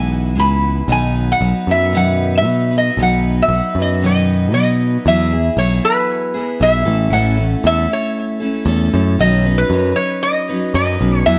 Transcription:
0.00 0.37 B1 medium
0.00 0.37 E3 medium
0.00 0.34 G#3 medium
0.00 0.36 B3 medium
0.00 0.36 E4 medium
0.00 0.38 B4 medium
0.00 0.39 G#5 loud
0.35 0.81 C#2 medium
0.35 0.89 G#3 medium
0.35 0.88 B3 medium
0.35 0.89 E4 medium
0.35 0.89 B4 medium
0.40 0.75 B5 medium
0.88 1.32 B1 medium
0.88 1.41 B2 medium
0.88 1.41 D#3 medium
0.88 1.41 F#3 medium
0.88 1.42 B3 medium
0.88 1.42 D#4 medium
0.88 1.44 B4 medium
0.92 1.27 G#5 medium
1.32 1.71 F#5 medium
1.41 1.52 B1 loud
1.41 1.67 F#3 medium
1.41 1.68 B3 medium
1.41 1.68 D#4 medium
1.41 1.68 B4 medium
1.67 2.46 F#2 medium
1.67 1.94 B3 soft
1.67 1.94 D#4 soft
1.67 1.94 B4 soft
1.67 1.96 E5 medium
1.72 1.93 F#3 soft
1.93 2.45 B2 medium
1.93 2.46 D#3 medium
1.93 2.42 F#3 medium
1.93 2.44 B3 medium
1.93 2.43 D#4 medium
1.93 2.46 B4 medium
1.93 2.35 F#5 medium
2.37 2.75 E5 medium
2.43 2.89 B2 medium
2.43 2.70 F#3 medium
2.43 2.71 B3 medium
2.43 2.71 D#4 medium
2.43 2.70 B4 medium
2.71 2.98 F#3 soft
2.71 2.98 B3 soft
2.71 2.98 D#4 soft
2.71 2.97 B4 soft
2.78 2.99 D#5 medium
2.97 3.41 B1 medium
2.97 3.50 B2 medium
2.97 3.50 D#3 medium
2.97 3.49 F#3 medium
2.97 3.51 B3 medium
2.97 3.51 D#4 medium
2.97 3.51 B4 medium
3.02 3.37 F#5 medium
3.42 3.80 E5 medium
3.48 3.60 B1 medium
3.48 3.76 F#3 medium
3.48 3.77 B3 medium
3.48 3.77 D#4 medium
3.53 3.77 B4 medium
3.75 4.53 F#2 medium
3.75 4.03 B4 medium
3.79 4.02 F#3 soft
3.79 4.02 B3 soft
3.79 4.03 D#4 soft
3.79 4.03 D#5 medium
4.02 4.54 B2 medium
4.02 4.54 D#3 medium
4.02 4.52 F#3 medium
4.02 4.53 B3 medium
4.02 4.55 D#4 medium
4.02 4.55 B4 medium
4.06 4.53 D#5 medium
4.53 4.96 B2 medium
4.53 5.05 F#3 medium
4.53 5.06 B3 medium
4.53 5.07 D#4 medium
4.53 5.07 B4 medium
4.53 5.02 D#5 medium
5.06 5.49 E2 medium
5.06 5.32 E3 medium
5.06 5.32 F#3 medium
5.06 5.32 B3 medium
5.06 5.33 E4 medium
5.06 5.31 G#4 medium
5.06 5.55 E5 medium
5.32 5.58 B3 soft
5.32 5.58 E4 soft
5.32 5.58 G#4 medium
5.57 5.79 B1 medium
5.57 6.35 F#3 medium
5.57 6.35 B3 medium
5.57 6.33 E4 medium
5.57 6.33 G#4 medium
5.57 5.82 C#5 medium
5.85 6.64 B4 medium
6.34 6.60 B3 soft
6.34 6.60 E4 soft
6.34 6.60 G#4 medium
6.60 6.82 B1 medium
6.60 6.86 F#3 medium
6.60 6.87 B3 medium
6.60 6.85 E4 medium
6.60 6.85 G#4 medium
6.60 7.15 E5 medium
6.85 7.08 A1 loud
6.85 7.11 A3 soft
6.85 7.12 C#4 soft
6.85 7.12 E4 medium
6.85 7.12 A4 medium
7.10 7.54 A1 medium
7.10 7.38 A2 medium
7.10 7.39 E3 medium
7.10 7.38 A3 medium
7.10 7.37 C#4 medium
7.10 7.36 E4 medium
7.10 7.35 A4 medium
7.10 7.66 F#5 loud
7.36 7.62 A3 soft
7.36 7.64 C#4 soft
7.36 7.64 E4 medium
7.36 7.63 A4 medium
7.63 7.86 E2 medium
7.63 8.41 A3 medium
7.63 8.41 C#4 medium
7.63 8.40 E4 medium
7.63 8.39 A4 medium
7.63 7.90 E5 loud
7.93 8.91 C#5 medium
8.40 8.64 A3 soft
8.40 8.65 C#4 soft
8.40 8.66 E4 soft
8.40 8.67 A4 medium
8.65 8.88 E2 medium
8.65 8.92 A3 medium
8.65 8.93 C#4 medium
8.65 8.92 E4 medium
8.65 8.92 A4 medium
8.93 9.15 F#2 loud
8.93 9.20 A3 soft
8.93 9.20 C#4 medium
8.93 9.19 E4 medium
8.93 9.19 A4 medium
9.19 9.63 B1 medium
9.19 9.45 B2 medium
9.19 9.46 D#3 medium
9.19 9.46 F#3 medium
9.19 9.46 C#4 medium
9.19 9.45 D#4 medium
9.19 9.44 B4 medium
9.19 9.56 D#5 medium
9.45 9.72 F#3 soft
9.45 9.72 C#4 soft
9.45 9.72 D#4 medium
9.45 9.71 B4 medium
9.58 9.98 B4 medium
9.70 9.92 F#2 loud
9.70 10.50 F#3 medium
9.70 10.49 C#4 medium
9.74 10.48 D#4 medium
9.74 10.48 B4 medium
9.96 10.23 C#5 medium
10.23 10.74 D#5 loud
10.49 10.73 F#3 soft
10.49 10.74 C#4 soft
10.49 10.74 D#4 medium
10.49 10.75 B4 medium
10.74 10.96 F#2 medium
10.74 11.01 F#3 medium
10.74 11.00 C#4 medium
10.74 11.01 D#4 medium
10.74 10.99 B4 medium
10.74 11.26 D#5 medium
11.01 11.23 B1 loud
11.01 11.25 F#3 soft
11.01 11.27 C#4 soft
11.01 11.27 D#4 soft
11.01 11.27 B4 medium
11.26 11.39 E2 loud
11.26 11.39 E3 medium
11.26 11.39 F#3 medium
11.26 11.39 B3 medium
11.26 11.39 E4 medium
11.26 11.39 G#4 medium
11.26 11.39 E5 medium

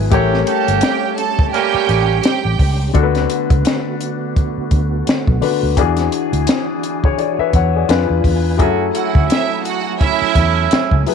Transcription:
0.00 0.10 G#1 medium
0.00 0.12 F#3 medium
0.00 0.12 E4 medium
0.00 0.12 G#4 medium
0.00 0.14 A4 soft
0.00 0.16 B4 medium
0.10 0.42 A1 loud
0.10 2.92 G3 medium
0.10 2.89 A3 medium
0.10 0.40 C#4 medium
0.10 2.92 C#4 medium
0.10 0.40 E4 medium
0.10 2.90 G4 medium
0.10 0.40 G4 loud
0.10 2.92 G4 medium
0.10 2.91 A#4 medium
0.10 2.91 C#5 medium
0.10 kick loud
0.10 closed hi-hat loud
0.34 snare soft
0.46 1.14 A#3 medium
0.46 1.14 C#4 medium
0.46 1.14 G4 medium
0.46 0.75 A4 medium
0.46 0.75 A5 medium
0.46 closed hi-hat medium
0.68 0.81 G1 medium
0.68 closed hi-hat medium
0.81 1.10 G4 medium
0.81 1.10 G5 loud
0.81 snare loud
0.81 closed hi-hat loud
1.16 1.45 A4 loud
1.16 1.45 A5 loud
1.16 closed hi-hat medium
1.39 kick loud
1.51 2.19 G3 loud
1.51 2.20 A#3 loud
1.51 2.20 C#4 loud
1.51 2.19 G4 loud
1.51 2.19 G5 loud
1.51 closed hi-hat medium
1.74 muted fingered electric bass stroke soft
1.89 2.19 A1 medium
1.89 closed hi-hat medium
2.22 2.75 G4 loud
2.22 2.75 G5 loud
2.22 snare loud
2.22 closed hi-hat loud
2.45 2.57 A1 medium
2.59 2.90 C#2 medium
2.59 kick medium
2.59 open hi-hat medium
2.93 3.25 D2 loud
2.93 5.37 D3 medium
2.93 5.74 D3 medium
2.93 5.75 A3 medium
2.93 5.74 B3 medium
2.93 5.37 D4 medium
2.93 7.85 F#4 medium
2.93 5.38 F#4 medium
2.93 3.03 A4 medium
2.93 kick medium
2.93 closed hi-hat loud
3.03 5.41 B4 medium
3.15 snare soft
3.15 closed hi-hat soft
3.30 closed hi-hat medium
3.50 3.63 C#2 medium
3.50 kick loud
3.50 closed hi-hat medium
3.65 snare loud
3.65 closed hi-hat loud
4.01 closed hi-hat medium
4.36 kick medium
4.36 closed hi-hat medium
4.58 muted fingered electric bass stroke soft
4.71 5.02 D2 medium
4.71 kick medium
4.71 closed hi-hat medium
5.07 muted fingered electric bass stroke soft
5.07 snare loud
5.07 closed hi-hat medium
5.27 5.40 B1 medium
5.27 kick loud
5.41 5.77 D3 medium
5.41 5.77 D4 medium
5.41 5.77 F#4 medium
5.41 5.77 B4 medium
5.41 open hi-hat medium
5.63 5.77 D2 medium
5.77 6.07 E2 loud
5.77 7.85 E3 medium
5.77 7.88 E3 medium
5.77 7.85 D4 medium
5.77 8.57 D4 medium
5.77 7.86 F#4 medium
5.77 11.14 G#5 medium
5.77 kick loud
5.77 closed hi-hat loud
5.81 6.83 G#4 medium
5.97 snare soft
5.97 closed hi-hat medium
6.12 closed hi-hat medium
6.33 6.45 D2 medium
6.33 closed hi-hat medium
6.47 snare loud
6.47 closed hi-hat loud
6.83 closed hi-hat medium
7.04 7.18 G#4 medium
7.04 7.18 C#5 medium
7.04 kick loud
7.18 7.38 G#4 soft
7.18 7.38 D5 medium
7.18 closed hi-hat medium
7.39 7.53 B4 medium
7.39 7.53 E5 medium
7.39 muted fingered electric bass stroke soft
7.53 7.84 E2 medium
7.53 7.74 C#5 medium
7.53 7.74 F#5 medium
7.53 kick medium
7.53 closed hi-hat medium
7.76 7.88 G#4 medium
7.76 8.08 D5 medium
7.89 8.06 F2 medium
7.89 8.60 D4 medium
7.89 8.59 F4 medium
7.89 8.57 G#4 medium
7.89 8.60 B4 medium
7.89 8.59 B4 medium
7.89 snare loud
7.89 closed hi-hat medium
8.10 8.22 E2 medium
8.24 8.60 E2 medium
8.24 kick medium
8.24 open hi-hat medium
8.57 8.90 F#2 loud
8.57 11.01 F#3 medium
8.57 11.14 F#3 medium
8.57 8.87 A3 medium
8.57 11.14 A3 medium
8.57 8.87 C#4 medium
8.57 11.02 E4 medium
8.57 11.14 E4 medium
8.57 8.87 F#4 medium
8.57 11.02 G#4 medium
8.57 11.03 A4 medium
8.57 kick loud
8.57 closed hi-hat medium
8.94 9.61 A3 medium
8.94 9.61 C#4 medium
8.94 9.61 E4 medium
8.94 9.22 F#4 medium
8.94 9.22 F#5 medium
8.94 closed hi-hat medium
9.15 9.28 D2 medium
9.15 kick loud
9.29 9.58 E4 medium
9.29 9.57 E5 loud
9.29 snare loud
9.29 closed hi-hat loud
9.63 9.92 F#4 medium
9.63 9.92 F#5 loud
9.63 closed hi-hat medium
9.98 11.02 A3 loud
9.98 11.02 C#4 loud
9.98 10.66 E4 loud
9.98 11.02 E4 loud
9.98 10.66 E5 loud
9.98 kick medium
9.98 closed hi-hat medium
10.22 muted fingered electric bass stroke soft
10.35 10.66 E2 medium
10.35 kick medium
10.35 closed hi-hat medium
10.71 muted fingered electric bass stroke soft
10.71 snare loud
10.71 closed hi-hat medium
10.91 11.04 C#2 medium
10.91 kick loud
11.06 11.14 F#3 medium
11.06 11.14 E4 soft
11.06 11.14 G#4 medium
11.06 11.14 B4 medium
11.06 open hi-hat medium

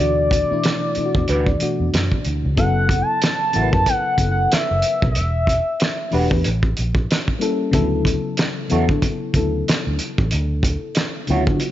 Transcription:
0.00 0.43 D2 loud
0.00 0.45 B2 medium
0.00 0.45 E3 medium
0.00 0.45 A3 medium
0.00 0.46 D4 medium
0.00 1.06 F#4 medium
0.00 2.25 D5 medium
0.31 kick medium
0.31 closed hi-hat medium
0.49 0.92 B2 medium
0.49 0.93 E3 medium
0.49 0.93 A3 medium
0.49 0.93 D4 medium
0.49 0.94 E4 medium
0.49 muted fingered electric bass stroke soft
0.64 snare loud
0.64 closed hi-hat medium
0.95 1.56 B2 medium
0.95 1.56 E3 medium
0.95 1.57 A3 medium
0.95 1.57 D4 medium
0.95 muted fingered electric bass stroke soft
0.95 closed hi-hat soft
0.99 1.05 E4 medium
1.06 1.61 F#4 medium
1.15 1.27 E2 medium
1.15 kick loud
1.28 1.56 D2 medium
1.28 1.45 D4 medium
1.28 1.46 F#4 medium
1.28 1.46 B4 medium
1.28 closed hi-hat medium
1.46 kick medium
1.59 2.50 B2 medium
1.59 2.50 E3 medium
1.59 2.51 A3 medium
1.59 2.51 D4 medium
1.59 2.52 F#4 medium
1.59 muted fingered electric bass stroke soft
1.59 closed hi-hat medium
1.80 1.91 E2 medium
1.94 2.09 F#2 medium
1.94 snare medium
1.94 closed hi-hat medium
2.12 kick medium
2.25 2.46 D2 medium
2.25 closed hi-hat medium
2.45 2.56 C#2 medium
2.55 3.01 F#1 loud
2.55 3.46 C#3 medium
2.55 3.47 F#3 medium
2.55 3.48 B3 medium
2.55 3.48 E4 medium
2.55 3.48 A4 medium
2.55 3.03 F#5 medium
2.55 kick medium
2.55 closed hi-hat medium
2.89 kick medium
2.89 closed hi-hat medium
3.02 3.22 A5 medium
3.22 3.90 A5 loud
3.22 snare loud
3.22 closed hi-hat medium
3.52 3.71 A1 medium
3.52 4.13 C#3 medium
3.52 4.14 F#3 medium
3.52 3.68 A3 medium
3.52 4.14 B3 medium
3.52 4.14 E4 medium
3.52 3.68 E4 medium
3.52 3.68 F#4 medium
3.52 3.62 A#4 medium
3.52 closed hi-hat medium
3.62 4.18 B4 medium
3.73 3.85 F#2 medium
3.73 kick loud
3.86 4.30 F#5 loud
3.86 kick medium
3.86 closed hi-hat medium
4.17 4.46 F#1 medium
4.17 5.15 C#3 medium
4.17 5.15 F#3 medium
4.17 5.15 B3 medium
4.17 5.16 E4 medium
4.17 5.16 A4 medium
4.17 kick medium
4.17 closed hi-hat medium
4.31 4.54 F#5 medium
4.52 5.10 E5 medium
4.52 muted fingered electric bass stroke soft
4.52 snare medium
4.52 closed hi-hat medium
4.71 4.82 F#1 medium
4.82 closed hi-hat medium
5.02 5.18 B1 medium
5.02 kick medium
5.10 5.19 D#5 medium
5.15 5.59 E1 medium
5.15 6.13 E5 medium
5.15 closed hi-hat medium
5.47 kick medium
5.47 closed hi-hat medium
5.80 snare loud
5.80 closed hi-hat medium
6.11 6.29 E1 medium
6.11 6.44 E3 medium
6.11 6.26 G3 medium
6.11 6.44 A3 medium
6.11 6.45 D4 medium
6.11 6.26 D4 medium
6.11 6.26 F#4 medium
6.11 6.45 G4 medium
6.11 6.45 B4 medium
6.11 open hi-hat soft
6.31 6.43 E2 medium
6.31 kick loud
6.44 6.73 A1 loud
6.44 closed hi-hat medium
6.63 kick medium
6.77 7.05 A#1 medium
6.77 closed hi-hat medium
6.95 kick loud
7.11 snare loud
7.11 closed hi-hat medium
7.28 kick medium
7.39 7.70 G3 medium
7.39 7.71 A#3 medium
7.39 7.71 C#4 medium
7.39 7.71 E4 medium
7.39 7.72 A4 loud
7.39 closed hi-hat medium
7.71 8.17 D2 medium
7.71 8.63 C#3 loud
7.71 7.80 F3 medium
7.71 8.63 B3 medium
7.71 8.64 E4 loud
7.71 8.64 A4 loud
7.71 kick medium
7.71 closed hi-hat medium
7.79 8.66 F#3 loud
8.05 kick medium
8.05 closed hi-hat medium
8.37 snare loud
8.37 closed hi-hat medium
8.69 8.87 E2 medium
8.69 9.30 C#3 medium
8.69 9.30 F#3 medium
8.69 9.30 B3 medium
8.69 9.31 E4 medium
8.69 8.84 E4 medium
8.69 8.84 F#4 medium
8.69 9.31 A4 medium
8.69 8.84 C#5 medium
8.69 closed hi-hat soft
8.89 9.01 D3 medium
8.89 kick loud
9.02 kick medium
9.02 closed hi-hat medium
9.34 9.62 D2 medium
9.34 10.55 C#3 medium
9.34 10.55 F#3 medium
9.34 10.55 B3 medium
9.34 10.55 E4 medium
9.34 10.56 A4 medium
9.34 kick medium
9.34 closed hi-hat medium
9.68 muted fingered electric bass stroke soft
9.68 snare loud
9.68 closed hi-hat medium
9.87 9.98 D2 medium
9.99 closed hi-hat medium
10.18 10.30 A1 medium
10.18 kick medium
10.31 10.76 D2 loud
10.31 closed hi-hat medium
10.63 kick medium
10.63 closed hi-hat medium
10.95 snare loud
10.95 closed hi-hat medium
11.27 11.45 D2 medium
11.27 11.71 C#3 medium
11.27 11.71 F#3 medium
11.27 11.71 B3 medium
11.27 11.71 E4 medium
11.27 11.42 E4 medium
11.27 11.37 F4 medium
11.27 11.43 F#4 medium
11.27 closed hi-hat medium
11.32 11.43 C#5 medium
11.37 11.71 F#4 medium
11.47 11.59 D3 medium
11.47 kick loud
11.60 closed hi-hat medium

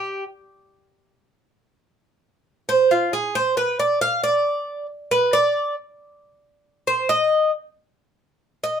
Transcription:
0.00 0.23 G4 medium
2.69 2.90 C5 medium
2.91 3.12 F4 medium
3.13 3.34 G#4 medium
3.35 3.57 C5 medium
3.57 3.78 B4 medium
3.79 4.01 D5 medium
4.01 4.23 F5 loud
4.24 4.85 D5 medium
5.11 5.33 B4 medium
5.33 5.74 D5 loud
6.87 7.09 C5 medium
7.09 7.50 D#5 medium
8.64 8.80 D#5 medium

